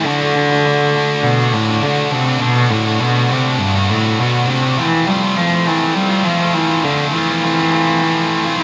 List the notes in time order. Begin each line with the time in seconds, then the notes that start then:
0.04 D3 A3
0.09 D4 F#4
0.22 A3 D4 F#4
0.36 D3 A3 D4 F#4
0.50 A3 D4 F#4
0.65 D3 A3 D4 F#4
0.96 D3 A3 D4 F#4
1.23 B2
1.39 A3 D4 F#4
1.53 A2 D3 A3 D4 F#4
1.68 A3 D4 F#4
1.83 D3 A3 D4
1.87 F#4
2.12 C3 D3 A3 D4 F#4
2.26 A3 D4 F#4
2.40 B2 D3 A3 D4 F#4
2.55 A3 D4 F#4
2.70 A2 D3 A3 D4 F#4
2.85 A3 D4 F#4
3.00 B2 D3 A3 D4 F#4
3.30 C3 D3 A3 D4 F#4
3.59 G2
3.76 A3 D4 F#4
3.89 A2 D3 A3 D4 F#4
4.04 A3 D4 F#4
4.19 B2 D3 A3 D4 F#4
4.47 C3 D3 A3 D4
4.51 F#4
4.62 A3 D4 F#4
4.78 E3 F3 A3 C4 F4
4.93 A3 C4 F4
5.07 F3 G3 A3 C4
5.11 F4
5.22 A3 C4 F4
5.36 F3 A3 C4
5.41 F4
5.66 E3 F3 A3 C4 F4
5.95 G3
6.10 A3 C4 F4
6.24 F3 A3 C4 F4
6.41 A3 C4 F4
6.54 E3 F3 A3 C4
6.58 F4
6.83 D3 F3 A3 C4 F4
6.98 A3 C4 F4
7.11 E3 F3
7.15 A3 C4 F4
7.29 A3 C4 F4
7.43 F3 A3 C4 F4
7.57 A3 C4 F4
7.72 F3 A3 C4 F4
8.02 F3 A3 C4 F4
8.46 A3 C4 F4
8.59 E4